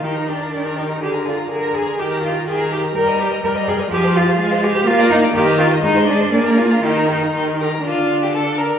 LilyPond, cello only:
\new Staff \with { instrumentName = "Cello" } { \time 2/4 \key ees \major \tempo 4 = 124 ees'8 d'4 ees'8 | g'8 f'8 bes'8 aes'8 | g'8 f'8 aes'8 g'8 | bes'8 g'8 bes'8 aes'8 |
g'8 f'4 g'8 | f'8 ees'8 g'8 f'8 | ees'8 d'4 f'8 | ees'4. r8 |
\key d \minor d2 | }